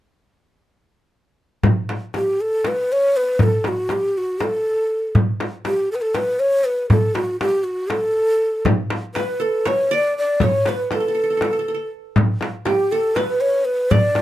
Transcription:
1.63 frame drum, darbuka dum
1.89 darbuka tek, frame drum
2.14 G4, darbuka tek, frame drum
2.41 A4
2.64 B4, darbuka tek, frame drum
2.92 C#5
3.17 B4
3.39 A4, frame drum, darbuka dum
3.64 F#4, darbuka tek, frame drum
3.89 G4, darbuka tek, frame drum
4.18 F#4
4.40 A4, darbuka tek, frame drum
5.15 darbuka dum, frame drum
5.40 darbuka tek, frame drum
5.65 G4, darbuka tek, frame drum
5.92 A4 B4
6.01 A4
6.15 B4, darbuka tek, frame drum
6.40 C#5
6.65 B4
6.90 A4, darbuka dum, frame drum
7.15 F#4, darbuka tek, frame drum
7.40 G4, darbuka tek, frame drum
7.64 F#4
7.90 A4, darbuka tek, frame drum
8.04 darbuka ka
8.16 darbuka ka
8.65 darbuka dum, frame drum
8.90 darbuka tek, frame drum
9.15 B4, darbuka tek, frame drum
9.40 A4
9.65 C#5, darbuka tek, frame drum
9.91 D5
10.18 D5
10.40 C#5, frame drum, darbuka dum
10.66 B4, darbuka tek, frame drum
10.91 A4, darbuka tek, frame drum
11.00 A4
11.08 A4
11.15 A4
11.24 A4
11.30 A4
11.37 A4, frame drum
11.42 A4, darbuka tek
11.53 A4
11.59 A4
11.68 A4
11.74 A4
12.16 frame drum, darbuka dum
12.41 darbuka tek, frame drum
12.65 G4, darbuka tek, frame drum
12.92 A4
13.16 B4, darbuka tek, frame drum
13.41 C#5
13.65 B4
13.91 D5, frame drum, darbuka dum
14.15 darbuka tek, frame drum

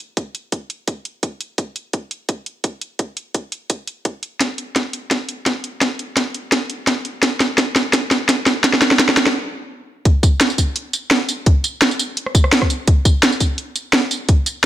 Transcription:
0.17 kick, closed hi-hat
0.35 closed hi-hat
0.52 kick, closed hi-hat
0.70 closed hi-hat
0.88 kick, closed hi-hat
1.05 closed hi-hat
1.23 kick, closed hi-hat
1.41 closed hi-hat
1.58 kick, closed hi-hat
1.76 closed hi-hat
1.93 kick, closed hi-hat
2.11 closed hi-hat
2.29 kick, closed hi-hat
2.46 closed hi-hat
2.64 kick, closed hi-hat
2.81 closed hi-hat
2.99 kick, closed hi-hat
3.17 closed hi-hat
3.34 kick, closed hi-hat
3.52 closed hi-hat
3.70 kick, closed hi-hat
3.87 closed hi-hat
4.05 kick, closed hi-hat
4.23 closed hi-hat
4.40 kick, snare, closed hi-hat
4.58 closed hi-hat
4.76 kick, snare, closed hi-hat
4.93 closed hi-hat
5.11 kick, snare, closed hi-hat
5.29 closed hi-hat
5.46 kick, snare, closed hi-hat
5.64 closed hi-hat
5.81 kick, snare, closed hi-hat
5.99 closed hi-hat
6.17 kick, snare, closed hi-hat
6.34 closed hi-hat
6.52 kick, snare, closed hi-hat
6.70 closed hi-hat
6.87 kick, snare, closed hi-hat
7.05 closed hi-hat
7.23 kick, snare, closed hi-hat
7.40 snare, closed hi-hat
7.58 kick, snare, closed hi-hat
7.76 snare, closed hi-hat
7.93 kick, snare, closed hi-hat
8.11 snare, closed hi-hat
8.29 kick, snare, closed hi-hat
8.46 snare, closed hi-hat
8.64 kick, snare, closed hi-hat
8.73 snare
8.82 snare, closed hi-hat
8.91 snare
8.99 kick, snare, closed hi-hat
9.09 snare
9.17 snare, closed hi-hat
9.26 snare, closed hi-hat
10.05 kick, closed hi-hat
10.23 kick, closed hi-hat, tambourine
10.41 snare, closed hi-hat, tambourine
10.50 tambourine
10.58 kick, open hi-hat, tambourine
10.76 closed hi-hat
10.93 closed hi-hat, tambourine
11.11 snare, closed hi-hat
11.29 open hi-hat, tambourine
11.46 kick, closed hi-hat
11.64 closed hi-hat, tambourine
11.82 snare, closed hi-hat, tambourine
11.91 tambourine
11.99 open hi-hat, tambourine
12.17 closed hi-hat
12.26 cross-stick
12.35 kick, closed hi-hat, tambourine
12.44 cross-stick
12.52 snare, closed hi-hat
12.62 kick, cross-stick
12.70 open hi-hat, tambourine
12.88 kick, closed hi-hat
13.05 kick, closed hi-hat, tambourine
13.23 snare, closed hi-hat, tambourine
13.32 tambourine
13.40 kick, open hi-hat, tambourine
13.58 closed hi-hat
13.76 closed hi-hat, tambourine
13.93 snare, closed hi-hat
14.11 open hi-hat, tambourine
14.29 kick, closed hi-hat
14.46 closed hi-hat, tambourine

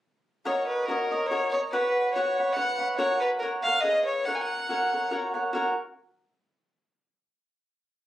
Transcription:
0.45 F#4 A#4 C#5 D#5
0.67 B4
0.86 F#4 A#4
0.90 C#5 D#5
1.11 A#4 C#5 D#5
1.26 C#5
1.31 F#4 A#4 C#5 D#5
1.51 C#5 D#5
1.56 A#4
1.71 F#4 B4 C#5 F#5
2.12 F#4 C#5
2.17 B4 C#5 F#5
2.38 B4 C#5 F#5
2.53 F#4 B4 F#5
2.58 C#5 F#5
2.78 B4 C#5 F#5
2.97 F#4 A#4 C#5 F#5
3.21 B4
3.39 F#4 A#4 C#5
3.44 F#5
3.63 C#5 F5 F#5
3.67 A#4
3.81 G#4 B4 C#5 D#5
3.85 F5
4.05 C#5
4.25 F#4 A#4 C#5 F#5
4.35 G#5
4.41 F#5
4.69 F#4 A#4 C#5 F#5
4.92 A#4 C#5 F#5
5.11 F#4 A#4 C#5 F#5
5.34 A#4 C#5 F#5
5.53 F#4 A#4 C#5 F#5

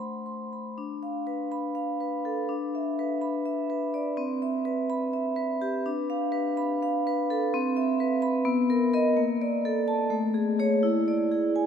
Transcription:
Already playing: A3 C5 C6
0.00 B5
0.26 C6
0.53 B5
0.78 D4
1.03 F5
1.27 B4
1.52 B5
1.75 F5
2.00 B4
2.25 A4
2.49 D4
2.75 E5
2.99 B4
3.21 B5
3.45 E5
3.70 B4
3.94 D5
4.17 C4
4.42 E5
4.65 B4
4.90 B5
5.13 E5
5.36 B4
5.61 G4
5.86 D4
6.10 F5
6.32 B4
6.57 B5
6.83 F5
7.07 B4
7.30 A4
7.54 C4
7.77 E5
8.00 B4
8.22 B5
8.45 B3
8.70 A#4
8.93 A#4 D#5
9.17 A#3
9.42 D5
9.65 A4
9.88 A5
10.10 A3
10.34 G#4
10.59 G#4 C#5
10.83 E4
11.08 D5
11.31 G#4
11.56 G#5

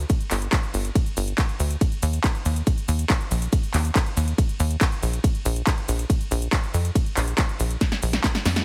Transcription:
0.10 kick, closed hi-hat, ride, shaker
0.21 closed hi-hat, shaker
0.31 G1, clap, open hi-hat, shaker
0.42 closed hi-hat, shaker
0.53 kick, clap, closed hi-hat, ride, shaker
0.63 closed hi-hat, shaker
0.74 G1, open hi-hat, shaker
0.85 closed hi-hat, shaker
0.95 kick, closed hi-hat, ride, shaker
1.06 closed hi-hat, shaker
1.17 G1, open hi-hat, shaker
1.28 closed hi-hat, shaker
1.38 kick, clap, closed hi-hat, ride, shaker
1.49 closed hi-hat, shaker
1.60 D2, open hi-hat, shaker
1.71 closed hi-hat, shaker
1.81 kick, closed hi-hat, ride, shaker
1.92 closed hi-hat, shaker
2.03 D#2, open hi-hat, shaker
2.13 closed hi-hat, shaker
2.24 kick, clap, closed hi-hat, ride, shaker
2.35 closed hi-hat, shaker
2.45 D#2, open hi-hat, shaker
2.56 closed hi-hat, shaker
2.67 kick, closed hi-hat, ride, shaker
2.78 closed hi-hat, shaker
2.88 D#2, open hi-hat, shaker
2.99 closed hi-hat, shaker
3.10 kick, clap, closed hi-hat, ride, shaker
3.21 closed hi-hat, shaker
3.31 A#1, open hi-hat, shaker
3.42 closed hi-hat, shaker
3.53 kick, closed hi-hat, ride, shaker
3.63 closed hi-hat, shaker
3.74 D#2, clap, open hi-hat, shaker
3.85 closed hi-hat, shaker
3.95 kick, clap, closed hi-hat, ride, shaker
4.06 closed hi-hat, shaker
4.17 D#2, open hi-hat, shaker
4.28 closed hi-hat, shaker
4.38 kick, closed hi-hat, ride, shaker
4.49 closed hi-hat, shaker
4.60 D#2, open hi-hat, shaker
4.71 closed hi-hat, shaker
4.81 kick, clap, closed hi-hat, ride, shaker
4.92 closed hi-hat, shaker
5.03 A#1, open hi-hat, shaker
5.13 closed hi-hat, shaker
5.24 kick, closed hi-hat, ride, shaker
5.35 closed hi-hat, shaker
5.45 A#1, open hi-hat, shaker
5.56 closed hi-hat, shaker
5.67 kick, clap, closed hi-hat, ride, shaker
5.78 closed hi-hat, shaker
5.88 A#1, open hi-hat, shaker
5.99 closed hi-hat, shaker
6.10 kick, closed hi-hat, ride, shaker
6.21 closed hi-hat, shaker
6.31 A#1, open hi-hat, shaker
6.42 closed hi-hat, shaker
6.53 kick, clap, closed hi-hat, ride, shaker
6.63 closed hi-hat, shaker
6.74 F2, open hi-hat, shaker
6.85 closed hi-hat, shaker
6.95 kick, closed hi-hat, ride, shaker
7.06 closed hi-hat, shaker
7.17 A#1, clap, open hi-hat, shaker
7.28 closed hi-hat, shaker
7.38 kick, clap, closed hi-hat, ride, shaker
7.49 closed hi-hat, shaker
7.60 A#1, open hi-hat, shaker
7.71 closed hi-hat, shaker
7.81 kick, snare, closed hi-hat, ride, shaker
7.92 snare, closed hi-hat, shaker
8.03 A#1, open hi-hat, shaker
8.13 snare, closed hi-hat, shaker
8.24 kick, snare, clap, closed hi-hat, ride, shaker
8.35 snare, closed hi-hat, shaker
8.45 F2, snare, open hi-hat, shaker
8.56 snare, closed hi-hat, shaker

